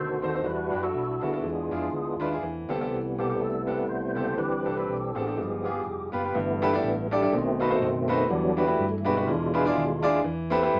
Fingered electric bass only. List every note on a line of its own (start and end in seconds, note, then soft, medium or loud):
0.00 0.19 D2 medium
0.24 0.42 D#2 medium
0.45 0.69 E2 medium
0.73 0.91 F#2 medium
0.94 1.18 B1 medium
1.23 1.40 D2 medium
1.44 1.67 E2 medium
1.71 1.89 F2 medium
1.92 2.16 D2 medium
2.19 2.38 D#2 medium
2.41 2.65 E2 medium
2.68 2.87 D2 medium
2.90 3.14 C2 medium
3.18 3.37 B1 medium
3.40 3.82 C2 medium
3.89 4.13 C2 medium
4.17 4.36 C#2 medium
4.39 4.62 D2 medium
4.67 4.85 C2 medium
4.88 5.12 B1 medium
5.16 5.39 A1 medium
5.37 5.79 G1 medium
5.86 6.09 F1 medium
6.13 6.32 F#1 medium
6.35 6.77 G1 loud
6.84 7.25 A1 loud
7.33 7.74 B1 loud
7.81 8.23 F#1 loud
8.30 8.72 E2 loud
8.79 9.28 G2 loud
9.27 9.69 E2 loud
9.76 10.18 D#2 loud
10.24 10.66 E2 loud
10.73 10.80 G2 loud